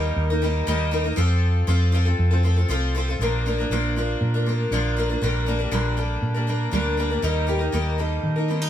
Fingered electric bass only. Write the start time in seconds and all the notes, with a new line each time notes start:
Already playing: D#2
0.16 D#2
0.67 D#2
1.17 F2
1.68 F2
2.19 F2
2.69 C2
3.19 A#1
3.70 A#1
4.21 A#2
4.71 A#1
5.22 A#1
5.72 A#1
6.22 A#2
6.72 D2
7.23 D#2
7.73 D#2
8.23 D#3